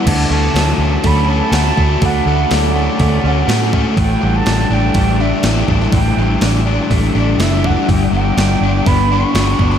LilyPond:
<<
  \new Staff \with { instrumentName = "Flute" } { \time 4/4 \key d \major \tempo 4 = 123 a''8 a''4. b''8 a''4. | fis''4 d''4. fis''16 fis''8. r8 | g''8. a''8. g''4 e''4 r8 | g''4 r4. d''8 e''8 fis''8 |
g''8 g''4. b''8 cis'''4. | }
  \new Staff \with { instrumentName = "Clean electric guitar" } { \time 4/4 \key d \major a8 a8 cis'8 a8 a8 cis'8 a4 | a8 a4 a8 a8 cis'8 a8 cis'8 | e8 e8 d'8 e8 a8 d'8 e8 d'8 | e8 e8 d'8 e8 a8 d'8 e8 d'8 |
r4 d'4 b8 d'4 d'8 | }
  \new Staff \with { instrumentName = "Overdriven electric guitar" } { \time 4/4 \key d \major d8 a8 fis8 cis'8 a8 cis'8 fis'8 a8 | d8 a8 fis8 cis'8 a8 cis'8 fis'8 a8 | a,8 g8 d8 d'8 g8 d'8 e'8 g8 | a,8 g8 d8 d'8 g8 d'8 e'8 g8 |
g8 b8 g8 d'8 b8 d'8 fis'8 b8 | }
  \new Staff \with { instrumentName = "Clean electric guitar" } { \clef bass \time 4/4 \key d \major d8 a8 d8 a8 cis'8 a8 d8 a8 | d8 a8 d8 a8 cis'8 a8 d8 a8 | a,8 d4 g8 d'8 g8 d8 g8 | a,8 d8 d8 g8 d'8 g8 d8 g8 |
g8 b8 g8 b8 d'8 b8 g8 b8 | }
  \new Staff \with { instrumentName = "Fingered electric bass" } { \clef bass \time 4/4 \key d \major d,8 d,8 d,8 d,8 d,4 d,8 d,8 | d,8 d,8 d,4 d,8 d,8 a,4 | a,,8 a,,8 a,,8 a,,8 a,,4 a,,8 a,,8 | a,,8 a,,8 a,,4 a,,8 a,,8 fis,,4 |
g,,8 g,,8 g,,8 g,,8 g,,4 g,,8 g,,8 | }
  \new DrumStaff \with { instrumentName = "Drums" } \drummode { \time 4/4 <cymc hho bd>4 <hho sn>4 <hho bd>4 <hho sn>8 bd8 | <hho bd>4 <hho sn>4 <hho bd>4 <hho sn>8 bd8 | <hho bd>4 <hho sn>4 <hho bd>4 <hho sn>8 bd16 sn16 | <hho bd>4 <hho sn>4 <hho bd>4 <hho sn>8 bd8 |
<hho bd>4 <hho sn>4 <hho bd>4 <hho sn>16 sn16 bd16 sn16 | }
>>